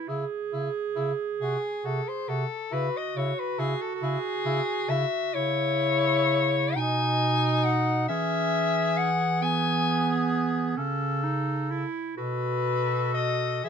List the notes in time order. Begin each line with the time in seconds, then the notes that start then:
0.08 C#3 E4 G#4
0.53 C#3 E4
0.96 C#3 E4
1.41 C3 F#4 G#4
1.84 C3 F#4 A4
2.08 C5
2.28 C3 F#4 A4
2.71 C#3 E4 F#4 B4
2.97 D#5
3.16 C#3 E4 C#5
3.39 B4
3.59 C#3 E4 G#4
3.81 A4
3.95 A4
4.02 C#3 E4 G#4
4.45 C#3 E4
4.89 C#3 E4 E5
5.34 C#3 E4 C#5
6.76 B2 D#4 G#5
7.64 F#5
8.08 E3 C#4 G#4 E5
8.97 F#5
9.41 B3 G#4 G#5
10.77 C#3 C#4 A4
11.23 D#4
11.71 E4
12.17 B2 F#4 A4 B4
13.14 D#5
13.63 E3 G#4 E5